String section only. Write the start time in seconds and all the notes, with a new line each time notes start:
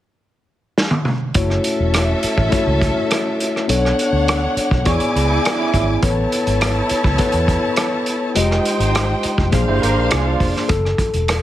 1.37 C#4 A4 E5
3.71 D4 C#5 F#5
4.87 E4 G#5 D6
6.03 E4 C#5 A5
8.36 D#4 C5 G5
9.52 D4 C5 F5